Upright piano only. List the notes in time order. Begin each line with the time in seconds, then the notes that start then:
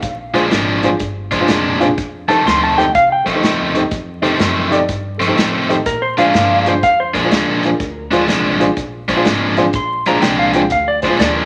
0.34 D4 F4 G#4 C5
0.83 D4 F4 G#4 C5
1.31 G#4 C5
1.41 D4 F4 G#4 C5
1.80 D4 F4 G#4 C5
2.29 D#4 G4 A4 C5
2.77 D#4 G4 A4 C5
3.24 A4 C5
3.34 D#4 G4 A4 C5
3.75 D#4 G4 A4 C5
4.22 D#4 G4 A4 C5
4.70 D#4 G4 A4 D5
5.18 A4 C5
5.28 D#4 G4 A4 C5
5.69 D#4 G4 A4 C5
6.18 D4 F4 G#4 C5
6.66 D4 F4 G#4 C5
7.15 G#4 C5
7.24 D4 F4 G#4 C5
7.65 D4 F4 G#4 C5
8.12 D4 F4 G#4 C5
8.60 D4 F4 G#4 C5
9.09 G#4 C5
9.17 D4 F4 G#4 C5
9.57 D4 F4 G#4 C5
10.08 D4 F4 G#4 C5
10.54 D4 F4 G#4 C5
11.02 G#4 C5
11.09 D4 F4 G#4 C5